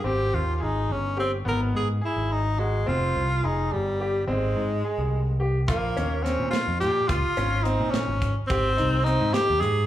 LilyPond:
<<
  \new Staff \with { instrumentName = "Grand piano" } { \time 5/8 \key aes \major \tempo 4 = 106 c'4 aes'4 g'8 | ces'4 aes'4 ges'8 | c'4 aes'4 g'8 | c'4 aes'4 g'8 |
f'8 des'8 c'4 r8 | f'8 des'8 c'4 r8 | g'8 ees'8 c'4 r8 | }
  \new Staff \with { instrumentName = "Tenor saxophone" } { \time 5/8 \key aes \major g'8 f'16. f'32 ees'8 des'8 c'8 | bes'8 aes'8 fes'8 ees'8 aes8 | f'4 ees'8 g4 | aes2 r8 |
bes4 des'8 f'8 g'8 | f'4 ees'8 des'8. r16 | c'4 ees'8 g'8 aes'8 | }
  \new Staff \with { instrumentName = "Picked electric bass" } { \clef bass \time 5/8 \key aes \major aes,,8 ees,8 aes,,8 g,,4 | aes,,8 aes,8 r16 aes,,4~ aes,,16 | f,,8 c,8 f,,8 g,,4 | aes,,8 aes,8 r16 c,4~ c,16 |
bes,,8 ees,8. bes,16 r16 f,16 bes,8 | des,16 r16 aes,,8. bes,8 aes,,8 r16 | aes,,8 c,8. aes,16 r16 ees,16 aes,8 | }
  \new DrumStaff \with { instrumentName = "Drums" } \drummode { \time 5/8 r4. r4 | r4. r4 | r4. r4 | r4. r4 |
<hh bd>8 hh8 <hh sn>8 <hh sn>8 hh8 | <hh bd>8 hh8 hh8 <hh sn>8 <hh bd>8 | <hh bd>8 hh8 hh8 <hh sn>8 hh8 | }
>>